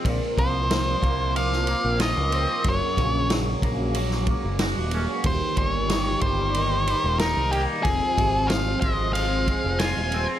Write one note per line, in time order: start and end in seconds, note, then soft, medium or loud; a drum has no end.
0.00 2.61 C4 medium
0.05 0.19 A#1 medium
0.05 1.69 A#2 medium
0.05 7.82 A#3 medium
0.05 2.63 F4 medium
0.05 2.63 A#4 medium
0.05 kick loud
0.05 ride medium
0.38 0.94 C2 medium
0.38 0.69 F3 medium
0.38 1.32 C5 medium
0.38 kick medium
0.38 ride medium
0.70 1.34 F3 medium
0.70 snare medium
0.70 ride medium
1.02 1.74 C2 medium
1.02 1.68 A#3 medium
1.02 kick medium
1.02 ride soft
1.35 2.66 F3 medium
1.35 1.97 F5 loud
1.35 ride medium
1.53 snare soft
1.67 3.64 A#3 medium
1.67 ride medium
1.84 2.13 A#1 medium
2.00 2.65 F4 medium
2.00 2.68 D#5 medium
2.00 snare medium
2.00 ride medium
2.17 2.45 C#2 medium
2.32 2.65 C4 medium
2.32 ride medium
2.64 2.79 F#1 medium
2.64 4.29 F#2 medium
2.64 5.23 C#4 medium
2.64 5.23 F#4 medium
2.64 5.23 G#4 medium
2.64 kick loud
2.64 ride medium
2.68 3.28 C#5 medium
2.97 3.55 A#1 medium
2.97 4.61 C#3 medium
2.97 kick medium
2.97 ride medium
3.30 3.95 F#3 medium
3.30 snare medium
3.30 ride medium
3.62 4.34 A#1 medium
3.62 4.27 A#3 medium
3.62 kick medium
3.62 ride medium
3.95 5.26 F#3 medium
3.95 ride medium
4.11 snare soft
4.27 5.26 A#3 medium
4.27 kick medium
4.27 ride medium
4.44 4.73 F#1 medium
4.59 5.26 F#4 medium
4.59 snare loud
4.59 ride medium
4.77 5.06 D#1 medium
4.91 5.26 C#4 medium
4.91 ride medium
5.24 5.39 D#1 medium
5.24 6.88 D#2 medium
5.24 7.84 D#4 medium
5.24 7.84 G4 medium
5.24 7.84 A#4 medium
5.24 5.58 C5 medium
5.24 kick loud
5.24 ride medium
5.57 6.14 G1 medium
5.57 7.21 A#2 medium
5.57 5.69 C5 medium
5.57 kick medium
5.57 ride medium
5.69 6.21 C#5 medium
5.90 6.55 D#3 medium
5.90 snare medium
5.90 ride medium
6.21 6.94 G1 medium
6.21 6.87 G3 medium
6.21 7.19 C5 medium
6.21 kick medium
6.21 ride medium
6.54 7.86 D#3 medium
6.54 ride medium
6.87 7.86 G3 medium
6.87 ride medium
7.04 7.33 D#1 medium
7.19 7.87 D#4 medium
7.19 7.51 A#4 medium
7.19 snare loud
7.19 ride medium
7.37 7.66 C2 medium
7.51 7.87 A#3 medium
7.51 7.60 G4 medium
7.51 ride medium
7.83 8.00 F1 medium
7.83 9.48 F2 medium
7.83 10.39 C4 medium
7.83 10.39 F4 medium
7.83 8.52 G#4 medium
7.83 10.39 G#4 medium
7.83 10.39 C5 medium
7.83 kick medium
7.83 ride medium
8.18 8.75 G#1 medium
8.18 9.81 C3 medium
8.18 kick medium
8.18 ride medium
8.48 9.15 F3 medium
8.48 8.81 F5 medium
8.48 snare loud
8.48 ride medium
8.81 9.54 G#1 medium
8.81 9.48 G#3 medium
8.81 9.13 D#5 medium
8.81 kick medium
8.81 ride medium
9.13 10.39 F3 medium
9.13 9.82 F5 medium
9.13 ride medium
9.48 10.39 G#3 medium
9.48 kick medium
9.48 ride medium
9.64 9.93 F1 medium
9.79 10.39 F4 medium
9.79 10.25 G#5 medium
9.79 snare loud
9.79 ride medium
9.97 10.25 D#1 medium
10.12 10.39 C4 medium
10.12 ride medium